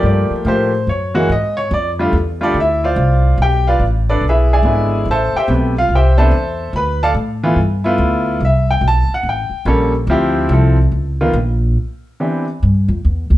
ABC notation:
X:1
M:4/4
L:1/8
Q:"Swing" 1/4=143
K:C
V:1 name="Upright piano"
d z c2 ^c2 _e c | d z2 [DGAd] [Ee] [Fcdf]3 | [Gg] [FBdf] z [DABd] [E^GBe] [Gde^g]3 | [Acea] [Gceg] z [Ff] [Gceg] [Acea]3 |
[Bb] [Adfa] z6 | e g a ^f g2 z2 | z8 | z8 |]
V:2 name="Upright piano"
[F,A,_B,G]2 [F,A,B,G] z2 [E,^G,^A,^F] z2 | z [D,G,A,F] z [D,G,A,F] z4 | z6 [D,^G,B,E]2 | z2 [C,A,B,G] z2 [C,A,B,D] z2 |
z3 [E,A,B,F] z [A,B,EF]3 | z6 [G,_B,^CA] z | [F,CEG]2 [F,CEA] z2 [_E,_B,_CF] z2 | z2 [E,B,CDG] z4 z |]
V:3 name="Upright bass" clef=bass
G,, z A,,2 ^F,,2 ^G,,2 | F,,2 E,,2 D,,2 C,,2 | B,,,2 A,,,2 B,,,2 ^G,,,2 | A,,, z B,,,2 C,,2 E,,2 |
D,,2 A,,2 G,,2 D,,2 | C,,2 B,,, z A,,, z _B,,,2 | D,,2 C,,2 _D,,2 _B,,,2 | z4 G,, F,, E,, D,, |]